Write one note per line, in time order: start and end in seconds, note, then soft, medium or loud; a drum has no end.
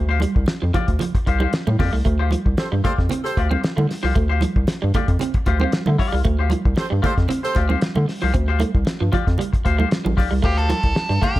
0.00 0.26 D2 loud
0.09 0.20 F4 medium
0.09 0.21 G4 medium
0.09 0.21 C5 medium
0.09 muted clean electric guitar stroke soft
0.20 0.32 G3 medium
0.20 muted clean electric guitar stroke soft
0.20 closed hi-hat medium
0.20 high conga medium
0.35 0.45 C2 medium
0.35 muted clean electric guitar stroke soft
0.35 kick medium
0.46 muted clean electric guitar stroke soft
0.46 snare loud
0.46 closed hi-hat medium
0.46 muted conga soft
0.62 0.72 F2 medium
0.62 0.71 F3 medium
0.62 muted clean electric guitar stroke soft
0.74 0.85 F3 medium
0.74 0.88 F4 medium
0.74 0.88 G4 medium
0.74 0.88 D5 medium
0.74 kick medium
0.74 closed hi-hat medium
0.74 muted conga soft
0.74 low conga medium
0.88 0.98 D2 medium
0.88 muted clean electric guitar stroke soft
0.88 kick medium
0.88 closed hi-hat soft
0.99 1.11 F3 medium
0.99 muted clean electric guitar stroke soft
0.99 closed hi-hat loud
0.99 muted conga soft
0.99 low conga medium
1.15 muted clean electric guitar stroke medium
1.15 kick medium
1.15 closed hi-hat medium
1.26 1.47 C2 medium
1.26 1.38 F4 medium
1.26 1.38 G4 medium
1.26 1.39 C5 medium
1.26 muted clean electric guitar stroke soft
1.26 kick medium
1.26 closed hi-hat medium
1.40 1.50 G3 medium
1.40 1.51 F4 medium
1.40 1.51 G4 medium
1.40 1.51 C5 medium
1.40 high conga medium
1.53 snare loud
1.53 closed hi-hat medium
1.53 muted conga soft
1.67 1.77 A2 loud
1.67 1.76 A3 medium
1.67 muted clean electric guitar stroke soft
1.67 high conga loud
1.79 1.90 F2 medium
1.79 1.93 F4 medium
1.79 1.93 G4 medium
1.79 1.93 D5 loud
1.79 muted clean electric guitar stroke soft
1.79 kick medium
1.79 snare soft
1.79 open hi-hat medium
1.79 low conga medium
1.93 2.03 C2 loud
1.93 2.02 A3 medium
1.93 muted clean electric guitar stroke soft
2.05 2.36 D2 loud
2.05 2.16 A3 medium
2.05 muted clean electric guitar stroke soft
2.05 kick medium
2.05 closed hi-hat medium
2.05 muted conga soft
2.19 2.30 F4 medium
2.19 2.31 G4 medium
2.19 2.32 C5 medium
2.19 muted clean electric guitar stroke soft
2.31 2.42 F3 medium
2.31 muted clean electric guitar stroke soft
2.31 closed hi-hat medium
2.31 high conga medium
2.46 2.55 C2 medium
2.46 muted clean electric guitar stroke soft
2.46 kick medium
2.58 2.67 G4 medium
2.58 2.68 A4 medium
2.58 2.68 C5 medium
2.58 muted clean electric guitar stroke soft
2.58 snare loud
2.58 closed hi-hat medium
2.58 muted conga soft
2.72 2.82 G2 medium
2.72 2.81 G3 medium
2.72 muted clean electric guitar stroke soft
2.84 2.95 A3 medium
2.84 2.98 F4 medium
2.84 2.93 G4 medium
2.84 2.98 G4 loud
2.84 2.93 A4 medium
2.84 2.93 C5 medium
2.84 2.98 D5 medium
2.84 kick medium
2.84 closed hi-hat medium
2.84 muted conga soft
2.84 low conga medium
2.98 3.08 F2 medium
2.98 muted clean electric guitar stroke soft
2.98 kick medium
2.98 snare soft
3.09 3.21 C4 medium
3.09 muted clean electric guitar stroke soft
3.09 closed hi-hat medium
3.09 muted conga soft
3.09 low conga medium
3.24 3.41 G4 medium
3.24 3.41 A4 medium
3.24 3.41 C5 loud
3.24 muted clean electric guitar stroke soft
3.24 closed hi-hat medium
3.37 3.57 D2 loud
3.37 3.48 F4 medium
3.37 3.48 G4 medium
3.37 3.49 D5 medium
3.37 muted clean electric guitar stroke soft
3.37 kick medium
3.37 closed hi-hat medium
3.50 3.60 C4 medium
3.50 3.61 F4 medium
3.50 3.61 G4 medium
3.50 3.60 C5 medium
3.50 high conga medium
3.63 muted clean electric guitar stroke soft
3.63 snare medium
3.63 closed hi-hat medium
3.63 muted conga soft
3.76 3.87 D3 loud
3.76 3.86 A3 medium
3.76 muted clean electric guitar stroke medium
3.76 high conga medium
3.89 muted clean electric guitar stroke soft
3.89 snare soft
3.89 open hi-hat medium
4.03 4.13 C2 loud
4.03 4.12 F3 medium
4.03 4.15 F4 medium
4.03 4.15 G4 medium
4.03 4.15 C5 medium
4.15 4.46 D2 medium
4.15 4.26 A3 medium
4.15 kick loud
4.15 closed hi-hat medium
4.15 muted conga soft
4.29 4.41 F4 medium
4.29 4.42 G4 medium
4.29 4.42 C5 medium
4.29 muted clean electric guitar stroke soft
4.41 4.52 F3 medium
4.41 muted clean electric guitar stroke soft
4.41 closed hi-hat medium
4.41 high conga medium
4.56 4.65 C2 medium
4.56 muted clean electric guitar stroke soft
4.56 kick loud
4.67 muted clean electric guitar stroke soft
4.67 snare loud
4.67 closed hi-hat loud
4.67 muted conga soft
4.82 4.92 G2 medium
4.82 4.91 G3 medium
4.82 muted clean electric guitar stroke soft
4.94 5.05 A3 medium
4.94 5.08 F4 medium
4.94 5.09 G4 medium
4.94 5.09 D5 medium
4.94 kick medium
4.94 closed hi-hat medium
4.94 muted conga soft
4.94 low conga medium
5.08 5.17 F2 medium
5.08 muted clean electric guitar stroke medium
5.08 kick medium
5.08 closed hi-hat soft
5.19 5.31 C4 medium
5.19 muted clean electric guitar stroke soft
5.19 closed hi-hat loud
5.19 muted conga soft
5.19 low conga medium
5.34 muted clean electric guitar stroke medium
5.34 kick loud
5.34 closed hi-hat medium
5.46 5.66 D2 medium
5.46 5.57 F4 medium
5.46 5.58 G4 medium
5.46 5.58 C5 medium
5.46 muted clean electric guitar stroke soft
5.46 kick medium
5.46 closed hi-hat medium
5.46 muted conga soft
5.60 5.70 C4 medium
5.60 5.71 F4 medium
5.60 5.71 G4 medium
5.60 5.70 C5 medium
5.60 high conga medium
5.72 muted clean electric guitar stroke soft
5.72 snare medium
5.72 closed hi-hat medium
5.86 5.97 D3 loud
5.86 5.96 A3 medium
5.86 muted clean electric guitar stroke soft
5.86 high conga loud
5.98 6.19 F4 medium
5.98 6.12 G4 medium
5.98 6.12 D5 loud
5.98 muted clean electric guitar stroke soft
5.98 kick loud
5.98 snare soft
5.98 open hi-hat medium
6.12 6.23 C2 loud
6.12 6.22 G3 medium
6.12 muted clean electric guitar stroke soft
6.25 6.55 D2 loud
6.25 6.35 A3 loud
6.25 muted clean electric guitar stroke soft
6.25 kick loud
6.25 closed hi-hat medium
6.25 muted conga soft
6.39 6.50 F4 medium
6.39 6.51 G4 medium
6.39 6.51 C5 medium
6.39 muted clean electric guitar stroke soft
6.50 6.61 F3 medium
6.50 muted clean electric guitar stroke soft
6.50 closed hi-hat medium
6.50 muted conga soft
6.50 high conga medium
6.65 6.75 C2 medium
6.65 muted clean electric guitar stroke soft
6.65 kick medium
6.76 6.87 G4 medium
6.76 6.87 A4 medium
6.76 6.87 C5 medium
6.76 muted clean electric guitar stroke soft
6.76 snare loud
6.76 closed hi-hat medium
6.76 muted conga soft
6.90 7.01 G2 medium
6.90 7.00 G3 medium
6.90 muted clean electric guitar stroke soft
7.02 7.14 A3 medium
7.02 7.17 F4 medium
7.02 7.17 G4 medium
7.02 7.13 G4 medium
7.02 7.13 A4 medium
7.02 7.13 C5 medium
7.02 7.17 D5 medium
7.02 kick medium
7.02 closed hi-hat medium
7.02 muted conga soft
7.02 low conga medium
7.17 7.27 F2 medium
7.17 muted clean electric guitar stroke soft
7.17 kick medium
7.17 snare soft
7.17 closed hi-hat soft
7.28 7.40 C4 loud
7.28 muted clean electric guitar stroke medium
7.28 closed hi-hat loud
7.28 muted conga soft
7.28 low conga medium
7.43 7.60 G4 medium
7.43 7.61 A4 medium
7.43 7.60 C5 loud
7.43 muted clean electric guitar stroke soft
7.43 closed hi-hat soft
7.55 7.76 D2 loud
7.55 7.67 F4 medium
7.55 7.67 G4 medium
7.55 7.67 D5 medium
7.55 muted clean electric guitar stroke soft
7.55 kick medium
7.55 closed hi-hat medium
7.55 muted conga soft
7.69 7.79 C4 medium
7.69 7.80 F4 medium
7.69 7.79 G4 medium
7.69 7.79 C5 medium
7.69 high conga medium
7.81 snare loud
7.81 closed hi-hat medium
7.95 8.06 D3 loud
7.95 8.05 A3 medium
7.95 muted clean electric guitar stroke soft
7.95 high conga medium
8.08 muted clean electric guitar stroke soft
8.08 snare soft
8.08 open hi-hat medium
8.22 8.32 C2 loud
8.22 8.31 F3 medium
8.22 8.33 F4 medium
8.22 8.34 G4 medium
8.22 8.34 C5 medium
8.34 8.64 D2 loud
8.34 8.44 C4 medium
8.34 muted clean electric guitar stroke soft
8.34 kick loud
8.34 closed hi-hat medium
8.34 muted conga soft
8.48 8.60 F4 medium
8.48 8.60 G4 medium
8.48 8.61 C5 medium
8.48 muted clean electric guitar stroke soft
8.60 8.71 A3 medium
8.60 muted clean electric guitar stroke soft
8.60 closed hi-hat medium
8.60 muted conga soft
8.60 high conga medium
8.75 8.84 C2 medium
8.75 muted clean electric guitar stroke soft
8.75 kick loud
8.85 muted clean electric guitar stroke soft
8.85 snare loud
8.85 closed hi-hat medium
8.85 muted conga soft
9.00 9.10 G2 medium
9.00 9.10 F3 medium
9.00 muted clean electric guitar stroke soft
9.12 9.23 F3 medium
9.12 9.26 F4 medium
9.12 9.26 G4 medium
9.12 9.26 D5 loud
9.12 kick medium
9.12 closed hi-hat medium
9.12 muted conga soft
9.12 low conga medium
9.27 9.37 F2 medium
9.27 muted clean electric guitar stroke soft
9.27 kick medium
9.27 snare soft
9.27 closed hi-hat soft
9.38 9.50 G3 medium
9.38 muted clean electric guitar stroke medium
9.38 closed hi-hat loud
9.38 low conga medium
9.53 muted clean electric guitar stroke soft
9.53 kick loud
9.53 closed hi-hat medium
9.65 9.85 D2 loud
9.65 9.76 F4 medium
9.65 9.76 G4 medium
9.65 9.77 C5 medium
9.65 muted clean electric guitar stroke soft
9.65 kick medium
9.65 closed hi-hat medium
9.78 9.88 A3 medium
9.78 9.89 F4 medium
9.78 9.89 G4 medium
9.78 9.89 C5 medium
9.78 high conga medium
9.90 muted clean electric guitar stroke medium
9.90 snare loud
9.90 closed hi-hat medium
10.04 10.15 A1 loud
10.04 10.14 F3 medium
10.04 muted clean electric guitar stroke soft
10.04 high conga loud
10.17 10.28 B1 medium
10.17 10.31 F4 medium
10.17 10.31 G4 medium
10.17 10.31 D5 medium
10.17 muted clean electric guitar stroke soft
10.17 kick medium
10.17 snare soft
10.17 open hi-hat medium
10.17 muted conga soft
10.31 10.41 C2 medium
10.31 10.40 G3 medium
10.31 muted clean electric guitar stroke soft
10.42 10.74 D2 loud
10.42 10.53 A3 medium
10.42 10.68 F4 medium
10.42 10.68 G4 medium
10.42 10.69 C5 medium
10.42 kick loud
10.42 crash medium
10.57 10.69 A4 loud
10.57 muted clean electric guitar stroke soft
10.57 closed hi-hat soft
10.69 10.80 F3 medium
10.69 11.23 A4 loud
10.69 closed hi-hat medium
10.69 high conga medium
10.83 10.93 C2 medium
10.83 muted clean electric guitar stroke soft
10.83 kick medium
10.83 closed hi-hat medium
10.95 muted clean electric guitar stroke soft
10.95 snare loud
10.95 high conga soft
11.09 11.19 G2 medium
11.09 11.19 G3 medium
11.09 muted clean electric guitar stroke medium
11.09 closed hi-hat soft
11.22 11.32 A3 medium
11.22 11.36 F4 medium
11.22 11.36 G4 medium
11.22 11.35 C5 medium
11.22 kick medium
11.22 closed hi-hat medium
11.22 low conga medium
11.36 11.40 F2 medium
11.36 muted clean electric guitar stroke soft
11.36 kick medium
11.36 closed hi-hat soft